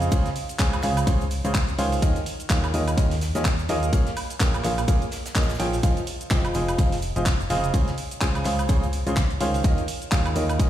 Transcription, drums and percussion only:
0.02 closed hi-hat, shaker
0.12 kick, closed hi-hat, ride, shaker
0.25 snare, closed hi-hat, shaker
0.36 open hi-hat, shaker
0.49 closed hi-hat, shaker
0.59 kick, snare, clap, closed hi-hat, ride, shaker
0.73 closed hi-hat, high woodblock, shaker
0.82 clap, open hi-hat, shaker
0.97 closed hi-hat, high woodblock, shaker
1.07 kick, closed hi-hat, ride, shaker
1.21 closed hi-hat, shaker
1.31 open hi-hat, shaker
1.45 closed hi-hat, shaker
1.54 kick, snare, clap, closed hi-hat, ride, shaker
1.68 closed hi-hat, shaker
1.79 open hi-hat, shaker
1.92 open hi-hat, shaker
2.02 kick, closed hi-hat, ride, shaker
2.16 closed hi-hat, shaker
2.26 open hi-hat, shaker
2.40 closed hi-hat, shaker
2.49 kick, snare, clap, closed hi-hat, ride, shaker
2.64 closed hi-hat, high woodblock, shaker
2.74 open hi-hat, shaker
2.88 closed hi-hat, high woodblock, shaker
2.98 kick, closed hi-hat, ride, shaker
3.11 snare, open hi-hat, shaker
3.21 snare, open hi-hat, shaker
3.35 snare, closed hi-hat, shaker
3.45 kick, snare, clap, closed hi-hat, ride, shaker
3.59 closed hi-hat, shaker
3.69 snare, open hi-hat, shaker
3.83 closed hi-hat, shaker
3.93 kick, closed hi-hat, ride, shaker
4.06 snare, closed hi-hat, shaker
4.17 open hi-hat, high woodblock, shaker
4.30 closed hi-hat, shaker
4.40 kick, snare, clap, closed hi-hat, ride, shaker
4.54 closed hi-hat, high woodblock, shaker
4.64 clap, open hi-hat, shaker
4.78 closed hi-hat, high woodblock, shaker
4.88 kick, closed hi-hat, ride, shaker
5.02 closed hi-hat, shaker
5.11 snare, open hi-hat, shaker
5.26 snare, closed hi-hat, shaker
5.35 kick, snare, clap, closed hi-hat, ride, shaker
5.42 snare, shaker
5.49 snare, closed hi-hat, shaker
5.54 snare, shaker
5.59 open hi-hat, shaker
5.73 open hi-hat, shaker
5.83 kick, closed hi-hat, ride, shaker
5.97 closed hi-hat, shaker
6.07 open hi-hat, shaker
6.21 closed hi-hat, shaker
6.30 kick, snare, clap, closed hi-hat, ride, shaker
6.45 closed hi-hat, high woodblock, shaker
6.54 open hi-hat, shaker
6.68 closed hi-hat, high woodblock, shaker
6.79 kick, closed hi-hat, ride, shaker
6.92 snare, open hi-hat, shaker
7.02 open hi-hat, shaker
7.16 closed hi-hat, shaker
7.26 kick, snare, clap, closed hi-hat, ride, shaker
7.40 closed hi-hat, shaker
7.50 snare, open hi-hat, shaker
7.64 closed hi-hat, shaker
7.74 kick, closed hi-hat, ride, shaker
7.87 snare, closed hi-hat, shaker
7.98 open hi-hat, shaker
8.11 closed hi-hat, shaker
8.21 kick, snare, clap, closed hi-hat, ride, shaker
8.35 closed hi-hat, high woodblock, shaker
8.44 clap, open hi-hat, shaker
8.59 closed hi-hat, high woodblock, shaker
8.69 kick, closed hi-hat, ride, shaker
8.83 closed hi-hat, shaker
8.93 open hi-hat, shaker
9.07 closed hi-hat, shaker
9.16 kick, snare, clap, closed hi-hat, ride, shaker
9.30 closed hi-hat, shaker
9.40 open hi-hat, shaker
9.54 open hi-hat, shaker
9.64 kick, closed hi-hat, ride, shaker
9.78 closed hi-hat, shaker
9.88 open hi-hat, shaker
10.02 closed hi-hat, shaker
10.12 kick, snare, clap, closed hi-hat, ride, shaker
10.26 closed hi-hat, high woodblock, shaker
10.36 open hi-hat, shaker
10.49 closed hi-hat, high woodblock, shaker
10.59 kick, closed hi-hat, ride, shaker

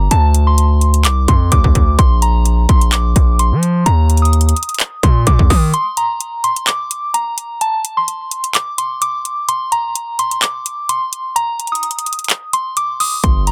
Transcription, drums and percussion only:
0.11 closed hi-hat
0.34 closed hi-hat
0.58 closed hi-hat
0.81 closed hi-hat
0.94 closed hi-hat
1.05 clap, closed hi-hat
1.28 kick, closed hi-hat
1.52 kick, closed hi-hat
1.64 kick
1.75 kick, closed hi-hat
1.99 kick, closed hi-hat
2.22 closed hi-hat
2.46 closed hi-hat
2.69 kick, closed hi-hat
2.81 closed hi-hat
2.92 clap, closed hi-hat
3.16 kick, closed hi-hat
3.39 closed hi-hat
3.63 closed hi-hat
3.86 closed hi-hat
4.10 closed hi-hat
4.17 closed hi-hat
4.25 closed hi-hat
4.33 closed hi-hat
4.41 closed hi-hat
4.49 closed hi-hat
4.56 closed hi-hat
4.63 closed hi-hat
4.69 closed hi-hat
4.74 closed hi-hat
4.80 clap, closed hi-hat
5.03 kick, closed hi-hat
5.27 kick, closed hi-hat
5.39 kick
5.50 kick, open hi-hat
5.74 closed hi-hat
5.97 closed hi-hat
6.21 closed hi-hat
6.44 closed hi-hat
6.56 closed hi-hat
6.67 clap, closed hi-hat
6.91 closed hi-hat
7.14 closed hi-hat
7.38 closed hi-hat
7.61 closed hi-hat
7.85 closed hi-hat
8.08 closed hi-hat
8.31 closed hi-hat
8.44 closed hi-hat
8.55 clap, closed hi-hat
8.78 closed hi-hat
9.02 closed hi-hat
9.25 closed hi-hat
9.49 closed hi-hat
9.72 closed hi-hat
9.95 closed hi-hat
10.19 closed hi-hat
10.31 closed hi-hat
10.42 clap, closed hi-hat
10.66 closed hi-hat
10.89 closed hi-hat
11.13 closed hi-hat
11.36 closed hi-hat
11.60 closed hi-hat
11.67 closed hi-hat
11.75 closed hi-hat
11.83 closed hi-hat
11.91 closed hi-hat
11.99 closed hi-hat
12.06 closed hi-hat
12.13 closed hi-hat
12.19 closed hi-hat
12.24 closed hi-hat
12.30 clap, closed hi-hat
12.53 closed hi-hat
12.77 closed hi-hat
13.00 open hi-hat
13.24 kick, closed hi-hat
13.47 closed hi-hat

